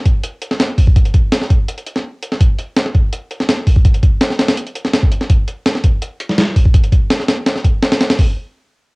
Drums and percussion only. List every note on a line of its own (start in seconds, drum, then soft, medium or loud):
0.06 kick loud
0.06 closed hi-hat medium
0.24 closed hi-hat medium
0.42 closed hi-hat medium
0.51 snare medium
0.60 snare loud
0.60 closed hi-hat medium
0.78 kick medium
0.78 open hi-hat medium
0.87 kick loud
0.96 kick loud
0.96 closed hi-hat medium
1.05 closed hi-hat soft
1.14 kick loud
1.14 closed hi-hat medium
1.32 snare loud
1.32 closed hi-hat medium
1.41 snare soft
1.50 kick loud
1.50 closed hi-hat medium
1.68 closed hi-hat medium
1.78 closed hi-hat soft
1.86 closed hi-hat medium
1.96 snare medium
2.22 closed hi-hat medium
2.32 snare soft
2.41 kick loud
2.41 closed hi-hat medium
2.59 closed hi-hat medium
2.76 snare loud
2.76 closed hi-hat medium
2.86 snare soft
2.95 kick loud
2.95 closed hi-hat medium
3.13 closed hi-hat medium
3.31 closed hi-hat medium
3.40 snare medium
3.49 snare loud
3.49 closed hi-hat medium
3.67 kick loud
3.67 open hi-hat medium
3.76 kick loud
3.85 kick loud
3.85 closed hi-hat medium
3.94 closed hi-hat soft
4.03 kick loud
4.03 closed hi-hat medium
4.21 snare loud
4.21 closed hi-hat medium
4.30 snare soft
4.39 snare loud
4.39 closed hi-hat medium
4.48 snare loud
4.48 closed hi-hat medium
4.57 closed hi-hat medium
4.67 closed hi-hat soft
4.75 closed hi-hat medium
4.85 snare medium
4.93 snare loud
4.93 closed hi-hat medium
5.03 kick loud
5.12 closed hi-hat medium
5.21 snare soft
5.30 kick loud
5.30 closed hi-hat medium
5.48 closed hi-hat medium
5.66 snare loud
5.66 closed hi-hat medium
5.75 snare soft
5.84 kick loud
5.84 closed hi-hat medium
6.02 closed hi-hat medium
6.20 closed hi-hat medium
6.29 snare medium
6.38 snare loud
6.38 closed hi-hat medium
6.56 kick loud
6.56 open hi-hat medium
6.65 kick loud
6.74 kick loud
6.74 closed hi-hat medium
6.84 closed hi-hat soft
6.92 kick loud
6.92 closed hi-hat medium
7.10 snare loud
7.10 closed hi-hat medium
7.20 snare soft
7.29 snare loud
7.29 closed hi-hat medium
7.46 snare loud
7.46 closed hi-hat medium
7.56 snare soft
7.65 kick medium
7.65 closed hi-hat medium
7.83 snare loud
7.83 closed hi-hat medium
7.92 snare loud
7.92 closed hi-hat medium
8.01 snare loud
8.01 closed hi-hat medium
8.10 snare loud
8.10 closed hi-hat medium
8.19 kick loud
8.19 open hi-hat medium